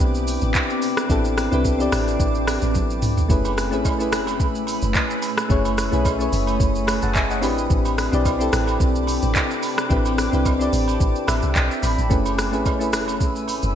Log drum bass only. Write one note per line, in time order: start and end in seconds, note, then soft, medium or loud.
0.00 0.39 B1 loud
0.42 0.54 A1 medium
1.10 1.49 A1 loud
1.52 1.89 C2 medium
1.92 2.18 A1 loud
2.20 2.59 A1 medium
2.63 3.04 A1 medium
3.02 3.28 C2 loud
3.30 3.74 F#1 loud
3.73 4.14 A1 medium
4.12 4.41 F#1 loud
4.40 4.79 A1 loud
4.83 4.94 F#1 medium
5.50 5.89 F#1 loud
5.93 6.29 B1 medium
6.33 6.58 F#1 loud
6.60 6.99 F#1 loud
7.03 7.44 F#1 medium
7.43 7.68 A1 loud
7.70 8.10 A1 loud
8.13 8.50 B1 loud
8.53 8.78 A1 loud
8.80 9.20 B1 loud
9.23 9.34 A1 loud
9.90 10.30 A1 loud
10.33 10.70 C2 medium
10.73 10.98 A1 loud
11.00 11.14 A1 loud
11.28 11.42 A1 loud
11.43 11.55 C2 medium
11.56 11.70 B1 loud
11.83 11.97 A1 loud
11.98 12.10 A1 medium
12.11 12.55 F#1 loud
12.53 12.95 A1 medium
12.93 13.22 F#1 loud
13.21 13.60 A1 loud
13.63 13.75 F#1 medium